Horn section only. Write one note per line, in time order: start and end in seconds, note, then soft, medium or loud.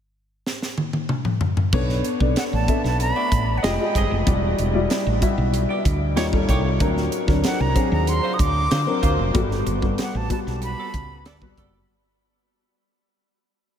3.16 3.29 A3 medium
3.16 3.29 F#4 medium
3.16 3.29 D5 medium
3.63 3.73 C4 medium
3.63 3.73 G#4 medium
3.63 3.73 D#5 loud
3.96 4.16 C4 medium
3.96 4.16 G#4 medium
3.96 4.16 D#5 medium
5.69 5.83 B3 medium
5.69 5.83 G4 medium
5.69 5.83 D5 medium
6.16 6.27 A#3 medium
6.16 6.27 G4 medium
6.16 6.27 C#5 medium
6.48 6.69 A#3 medium
6.48 6.69 G4 medium
6.48 6.69 C#5 medium
8.23 8.37 F#3 medium
8.23 8.37 F4 medium
8.23 8.37 C5 medium
8.70 8.81 F#3 medium
8.70 8.81 F4 medium
8.70 8.81 C5 loud
9.02 9.23 F#3 medium
9.02 9.23 F4 medium
9.02 9.23 C5 medium
10.78 10.92 B3 medium
10.78 10.92 A4 medium
10.78 10.92 D5 medium
11.26 11.36 B3 medium
11.26 11.36 A4 medium
11.26 11.36 D5 loud
11.57 11.78 B3 medium
11.57 11.78 A4 medium
11.57 11.78 D5 medium